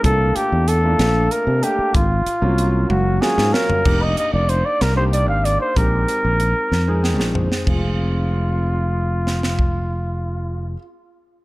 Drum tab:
CC |------------|------------|x-----------|------------|
HH |x-x-x-x-x-x-|x-x-x-------|--x-x-x-x-x-|x-x-x-------|
SD |------o-----|--------ooo-|------o-----|------o-oo-o|
T1 |------------|------o-----|------------|------------|
FT |------------|-----------o|------------|----------o-|
BD |o-----------|o-----------|o-----------|o-----------|

CC |x-----------|------------|
HH |------------|------------|
SD |----------oo|------------|
T1 |------------|------------|
FT |------------|------------|
BD |o-----------|o-----------|